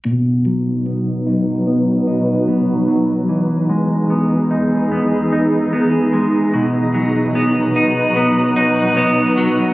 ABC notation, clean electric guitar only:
X:1
M:4/4
L:1/8
Q:1/4=74
K:B
V:1 name="Clean electric guitar"
B,, F, B, D B, D B, F, | E, G, B, D B, D B, G, | B,, F, B, D B, D B, F, |]